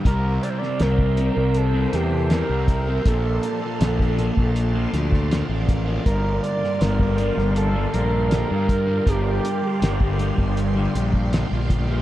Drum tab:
HH |x-x-x-x-x-x-x-x-|x-x-x-x-x-x-x-x-|x-x-x-x-x-x-x-x-|x-x-x-x-x-x-x-x-|
SD |---oo-----o-o---|----oo----ooo---|---oo--o----o---|----o-------o---|
BD |o----o--------o-|o----o-o---o--o-|o----o--------o-|o----o-o---o--o-|